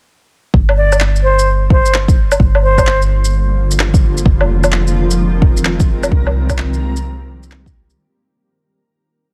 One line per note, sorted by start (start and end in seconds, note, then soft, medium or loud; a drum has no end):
0.54 2.38 G1 medium
0.54 kick loud
0.69 low woodblock medium
0.77 1.02 D5 medium
0.93 low woodblock medium
0.93 shaker medium
1.00 clap loud
1.16 shaker soft
1.23 1.48 C5 medium
1.39 shaker medium
1.70 1.95 C5 medium
1.70 kick loud
1.86 shaker medium
1.94 clap loud
2.08 kick loud
2.08 shaker soft
2.32 low woodblock medium
2.32 shaker medium
2.40 4.24 G1 medium
2.40 4.25 D3 medium
2.40 6.09 F3 medium
2.40 4.25 G3 medium
2.40 4.25 A#3 medium
2.40 6.09 F4 medium
2.40 kick loud
2.55 low woodblock medium
2.63 3.01 C5 medium
2.78 kick medium
2.78 low woodblock medium
2.78 shaker medium
2.87 clap loud
3.02 shaker soft
3.25 shaker medium
3.71 shaker medium
3.79 clap loud
3.94 kick loud
3.94 shaker soft
4.18 shaker medium
4.25 6.10 F1 medium
4.25 7.94 D#3 medium
4.25 6.10 G#3 medium
4.25 7.95 C4 medium
4.25 7.99 A#4 medium
4.25 kick loud
4.41 low woodblock medium
4.64 low woodblock medium
4.64 shaker medium
4.72 clap loud
4.87 shaker soft
5.11 shaker medium
5.42 kick loud
5.57 shaker medium
5.65 clap loud
5.80 kick loud
5.80 shaker soft
6.03 low woodblock medium
6.03 shaker medium
6.12 7.96 C2 medium
6.12 7.96 G3 medium
6.12 7.96 A#3 medium
6.12 7.96 G4 medium
6.12 kick loud
6.27 low woodblock medium
6.50 kick medium
6.50 low woodblock medium
6.50 shaker medium
6.58 clap loud
6.74 shaker soft
6.97 shaker medium
7.43 shaker medium
7.52 clap loud
7.66 kick loud
7.66 shaker soft
7.90 shaker medium